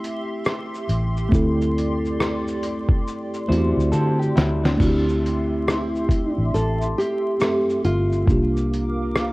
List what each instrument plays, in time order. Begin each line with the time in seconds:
Already playing: fingered electric bass D2, tine electric piano A3 C4 E4 G4, analog synth pad G4 E5 C6
0.04 closed hi-hat, shaker
0.45 cross-stick, shaker
0.74 shaker
0.89 fingered electric bass A1, closed hi-hat, shaker
1.17 shaker
1.29 fingered electric bass D2, tine electric piano A3 C4, analog synth pad D5, kick
1.33 tine electric piano E4 A4, shaker
1.61 shaker
1.78 closed hi-hat, shaker
2.05 shaker
2.20 cross-stick, shaker
2.48 shaker
2.63 closed hi-hat, shaker
2.89 kick
3.08 shaker
3.34 shaker
3.48 fingered electric bass E2, tine electric piano A3 C4 E4 F#4, clean electric guitar E4 C5
3.52 closed hi-hat, shaker
3.58 tine electric piano G4
3.77 fingered electric bass D2, shaker
3.92 fingered electric bass D3, clean electric guitar C4 A4, shaker
4.19 clean electric guitar G4, shaker
4.36 fingered electric bass D2, clean electric guitar G3 E4, snare, closed hi-hat, shaker
4.63 clean electric guitar D4, snare, shaker
4.77 fingered electric bass D2, tine electric piano A3 C4, analog synth pad G4 E5 C6, kick, crash
4.81 tine electric piano E4 F#4, shaker
4.89 tine electric piano G4
5.09 shaker
5.26 closed hi-hat, shaker
5.67 nylon-string guitar E4, cross-stick, shaker
5.95 shaker
6.09 kick, closed hi-hat, shaker
6.31 nylon-string guitar D4
6.38 fingered electric bass A1
6.54 fingered electric bass A1, nylon-string guitar A4, shaker
6.81 shaker
6.98 nylon-string guitar G4, closed hi-hat, shaker
7.40 tine electric piano A3 C4 A4 E5, cross-stick, shaker
7.70 shaker
7.85 fingered electric bass G1, nylon-string guitar F4, closed hi-hat, shaker
8.12 shaker
8.26 fingered electric bass C2, tine electric piano A#3 D4 F4, analog synth pad A#4 F5 D6, kick, shaker
8.31 tine electric piano G4
8.56 shaker
8.73 closed hi-hat, shaker
9.15 cross-stick, shaker